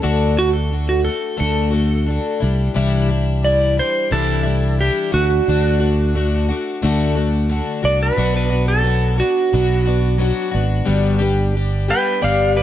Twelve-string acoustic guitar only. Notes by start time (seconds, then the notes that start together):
0.02 D3 A3 D4 F#4
0.36 A3 D4 F#4
0.70 D3 A3 D4
0.74 F#4
1.05 D4 F#4
1.09 A3
1.37 D3 A3 D4 F#4
1.71 A3 D4 F#4
2.06 D3 A3 D4 F#4
2.40 G3 D4 E4
2.74 C3 E3 G3 D4 E4
3.09 G3 D4 E4
3.42 E3 G3 D4 E4
3.77 G3 D4 E4
4.11 C3 E3 G3 D4 E4
4.43 G3 D4 E4
4.79 E3 G3 D4 E4
5.12 A3 D4 F#4
5.47 D3 A3 D4 F#4
5.80 A3 D4 F#4
6.13 D3 A3 D4 F#4
6.49 A3 D4 F#4
6.82 D3 A3 D4 F#4
7.15 A3 D4 F#4
7.49 D3 A3 D4 F#4
7.83 A3 D4 F#4
8.16 B2 F#3 B3 D4 F#4
8.50 B3 D4 F#4
8.83 F#3 B3 D4 F#4
9.18 B3 D4 F#4
9.53 B2 F#3 B3 D4 F#4
9.86 B3 D4 F#4
10.18 F#3 B3 D4 F#4
10.52 B3 D4 F#4
10.85 G2 D3 G3 B3 D4
11.19 G3 B3 D4 G4
11.54 G3 B3 D4 G4
11.88 G3 B3 D4 G4
12.21 G2 D3 G3 B3 D4 G4
12.57 G3 B3 D4 G4